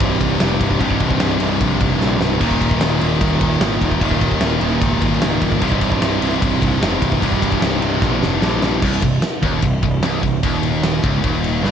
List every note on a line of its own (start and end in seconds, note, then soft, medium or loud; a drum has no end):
0.00 0.17 C1 loud
0.00 0.37 C2 medium
0.00 0.79 C2 medium
0.00 0.39 G2 medium
0.00 0.79 G2 loud
0.00 0.39 C3 loud
0.00 0.80 C3 medium
0.00 0.81 G3 loud
0.00 0.82 D#4 loud
0.00 kick loud
0.00 ride loud
0.21 0.37 C1 loud
0.21 kick medium
0.21 ride medium
0.39 0.57 F1 loud
0.39 0.78 C2 medium
0.39 0.79 G2 loud
0.39 0.80 C3 loud
0.39 snare loud
0.39 ride loud
0.61 0.77 C1 loud
0.61 kick medium
0.61 ride medium
0.71 kick medium
0.79 0.97 C1 loud
0.79 1.39 C2 loud
0.79 1.40 G2 loud
0.79 1.38 C3 loud
0.79 2.41 G3 loud
0.79 2.42 D#4 loud
0.79 kick medium
0.79 ride loud
0.91 kick medium
1.00 1.17 C1 medium
1.00 kick medium
1.00 ride medium
1.11 kick medium
1.20 1.37 C1 loud
1.20 snare loud
1.20 ride medium
1.40 1.57 C1 medium
1.40 1.98 C2 medium
1.40 1.99 G2 medium
1.40 1.99 C3 loud
1.40 ride medium
1.61 1.77 A#1 loud
1.61 kick loud
1.61 ride loud
1.81 1.97 F1 medium
1.81 kick medium
1.81 ride medium
1.99 2.17 A#1 loud
1.99 2.39 C2 medium
1.99 2.40 G2 medium
1.99 2.40 C3 medium
1.99 snare medium
2.20 2.37 C#1 medium
2.20 snare medium
2.39 2.57 D#1 medium
2.39 3.02 D#2 medium
2.39 3.00 A#2 medium
2.39 2.99 D#3 loud
2.39 4.01 G3 medium
2.39 4.01 A#3 medium
2.39 4.02 D#4 loud
2.39 kick loud
2.39 crash loud
2.51 kick loud
2.61 2.78 D#1 medium
2.61 kick medium
2.61 ride medium
2.71 kick medium
2.81 2.97 D#1 loud
2.81 snare loud
2.81 ride loud
2.99 3.17 D#1 medium
2.99 3.58 D#2 medium
2.99 3.60 A#2 medium
2.99 3.59 D#3 medium
2.99 ride medium
3.21 3.37 D#1 loud
3.21 kick loud
3.21 ride loud
3.41 3.57 D#1 medium
3.41 kick medium
3.41 ride medium
3.60 3.77 G#1 loud
3.60 3.98 D#2 medium
3.60 4.00 A#2 medium
3.60 4.01 D#3 medium
3.60 snare loud
3.60 ride loud
3.81 3.98 D#1 medium
3.81 kick loud
3.81 ride medium
3.91 kick medium
3.99 4.18 D#1 medium
3.99 4.59 D#2 loud
3.99 4.60 A#2 medium
3.99 4.60 D#3 loud
3.99 5.62 G3 loud
3.99 5.61 A#3 loud
3.99 5.63 D#4 loud
3.99 kick loud
3.99 ride loud
4.11 kick loud
4.21 4.37 D#1 medium
4.21 kick medium
4.21 ride medium
4.31 kick medium
4.41 4.57 D#1 loud
4.41 snare loud
4.41 ride medium
4.61 4.77 D#1 medium
4.61 5.19 D#2 medium
4.61 5.21 A#2 medium
4.61 5.20 D#3 loud
4.61 ride medium
4.82 4.98 C#1 loud
4.82 kick loud
4.82 ride loud
5.02 5.18 G#1 loud
5.02 kick medium
5.02 ride medium
5.21 5.37 C#1 loud
5.21 5.59 D#2 medium
5.21 5.61 A#2 medium
5.21 5.61 D#3 medium
5.21 snare loud
5.21 ride loud
5.42 5.58 C#1 loud
5.42 kick medium
5.42 ride medium
5.52 kick medium
5.60 5.78 C1 loud
5.60 6.23 C2 medium
5.60 6.20 G2 loud
5.60 6.19 C3 loud
5.60 7.22 G3 loud
5.60 7.23 D#4 loud
5.60 kick loud
5.60 ride loud
5.72 kick medium
5.81 5.98 C1 medium
5.81 kick medium
5.81 ride medium
5.92 kick medium
6.01 6.18 C1 loud
6.01 snare loud
6.01 ride loud
6.20 6.38 C1 medium
6.20 6.80 C2 medium
6.20 6.80 G2 medium
6.20 6.83 C3 loud
6.20 ride medium
6.42 6.58 C1 loud
6.42 kick loud
6.42 ride loud
6.62 6.79 C1 loud
6.62 kick medium
6.62 ride medium
6.80 6.98 F1 loud
6.80 7.20 C2 medium
6.80 7.21 G2 medium
6.80 7.24 C3 medium
6.80 snare loud
6.80 ride loud
7.02 7.19 C1 loud
7.02 kick loud
7.02 ride medium
7.12 kick medium
7.21 7.38 C1 medium
7.21 7.80 C2 medium
7.21 7.81 G2 loud
7.21 7.79 C3 loud
7.21 8.81 G3 loud
7.21 8.82 D#4 loud
7.21 kick loud
7.21 ride loud
7.32 kick medium
7.42 7.59 C1 medium
7.42 kick medium
7.42 ride medium
7.52 kick medium
7.62 7.78 C1 loud
7.62 snare loud
7.62 ride medium
7.81 7.98 C1 medium
7.81 8.40 C2 medium
7.81 8.41 G2 medium
7.81 8.40 C3 loud
7.81 ride medium
8.02 8.18 A#1 loud
8.02 kick loud
8.02 snare medium
8.21 8.38 F1 medium
8.21 snare medium
8.41 8.58 A#1 loud
8.41 8.81 C2 medium
8.41 8.82 G2 medium
8.41 8.82 C3 medium
8.41 snare loud
8.62 8.79 A#1 loud
8.62 snare loud
8.82 9.01 C1 medium
8.82 9.01 C2 loud
8.82 kick loud
8.82 crash loud
9.02 9.21 C1 medium
9.02 9.18 C2 medium
9.02 kick medium
9.02 ride medium
9.22 snare loud
9.22 ride medium
9.42 9.62 D#1 medium
9.42 9.62 D#2 loud
9.42 kick loud
9.42 ride medium
9.62 9.82 C1 medium
9.62 9.79 C2 medium
9.62 kick medium
9.62 ride loud
9.83 10.02 C1 medium
9.83 9.99 C2 medium
9.83 kick medium
9.83 ride medium
10.02 10.22 C1 loud
10.02 10.22 C2 loud
10.02 snare loud
10.02 ride loud
10.23 10.42 C1 medium
10.23 10.39 C2 medium
10.23 kick loud
10.23 ride medium
10.43 11.00 D#1 medium
10.43 11.02 D#2 loud
10.43 kick loud
10.43 ride loud
10.63 ride medium
10.83 snare medium
10.83 ride medium
11.02 11.22 C#1 medium
11.02 11.23 C#2 loud
11.02 kick loud
11.02 ride medium
11.23 11.61 D#1 loud
11.23 11.63 D#2 loud
11.23 kick loud
11.23 ride loud
11.44 ride medium
11.63 11.71 G1 loud
11.63 11.71 G2 loud
11.63 snare medium